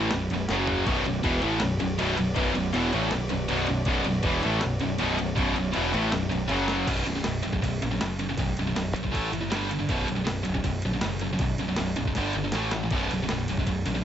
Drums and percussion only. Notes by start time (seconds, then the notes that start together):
0.11 snare, crash
0.30 crash
0.49 snare
0.67 floor tom
0.86 kick, crash
1.05 crash
1.24 kick, crash
1.42 crash
1.60 snare, crash
1.80 crash
1.99 crash
2.17 crash
2.36 kick, crash
2.55 crash
2.74 snare, crash
2.93 crash
3.11 snare, crash
3.29 crash
3.49 crash
3.67 crash
3.85 kick, crash
4.04 crash
4.23 kick, crash
4.43 crash
4.61 snare, crash
4.80 crash
4.98 crash
5.19 crash
5.37 kick, crash
5.56 crash
5.74 crash
5.94 crash
6.12 snare, crash
6.32 crash
6.49 crash
6.68 snare
6.87 kick, crash, ride
7.06 ride
7.24 snare, ride
7.43 ride
7.53 kick
7.63 kick, ride
7.82 ride
8.01 snare, ride
8.19 ride
8.37 kick, ride
8.57 ride
8.76 snare, ride
8.96 ride
9.04 kick
9.14 kick, ride
9.33 ride
9.52 snare, ride
9.71 ride
9.89 kick, ride
10.08 ride
10.27 snare, ride
10.45 ride
10.55 kick
10.64 kick, ride
10.82 ride
11.01 snare, ride
11.19 ride
11.39 kick, ride
11.58 ride
11.76 snare, ride
11.96 ride
12.05 kick
12.15 kick, snare, ride
12.33 ride
12.52 snare, ride
12.71 snare, ride
12.91 kick, splash, crash
13.11 ride
13.29 snare, ride
13.48 ride
13.57 kick
13.67 kick, ride
13.86 ride